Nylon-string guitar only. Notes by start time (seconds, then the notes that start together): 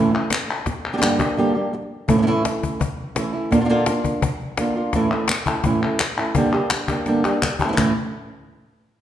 Already playing: A2 E3 A3 C#4 E4
0.13 A3 E4
0.31 muted nylon-string guitar stroke
0.67 muted nylon-string guitar stroke
0.92 D3 G3 A#3 D4 G4
0.97 D3 G3 A#3 D4 G4
1.02 G2 D3 G3 A#3 D4 G4
1.20 G3 A#3 D4 G4
1.37 G2 D3 G3 A#3 D4 G4
1.55 G3 A#3 D4 G4
1.73 muted nylon-string guitar stroke
2.08 A2 E3 A3 C#4 E4
2.18 E3 A3 C#4 E4
2.22 E3 A3 C#4 E4
2.27 A2 E3 A3 C#4 E4
2.45 A3 C#4 E4
2.80 muted nylon-string guitar stroke
3.15 E3 A3 C#4 E4
3.33 A3 C#4 E4
3.51 A#2 D3 A#3 D4 F4
3.60 D3 A#3 D4 F4
3.65 D3 A#3 D4 F4
3.69 A#2 D3 A#3 D4 F4
3.86 A#3 D4 F4
4.23 muted nylon-string guitar stroke
4.58 D3 A#3 D4 F4
4.76 A#3 D4 F4
4.94 A2 E3 A3 C#4 E4
5.11 A3 C#4 E4
5.29 muted nylon-string guitar stroke
5.46 A3 C#4 E4
5.64 A2 E3 A3 C#4 E4
5.82 A3 C#4 E4
6.00 muted nylon-string guitar stroke
6.18 A3 C#4 E4
6.35 G2 D3 G3 A#3 D4 G4
6.53 G3 A#3 D4 G4
6.71 muted nylon-string guitar stroke
6.88 G3 A#3 D4 G4
7.06 G2 D3 G3 A#3 D4 G4
7.24 G3 A#3 D4 G4
7.42 muted nylon-string guitar stroke
7.59 E3 A#3 D4 G4
7.64 A3 C#4 E4
7.68 E3 A3 C#4 E4
7.73 A2 E3 A3 C#4 E4
7.77 E3 A3 C#4 E4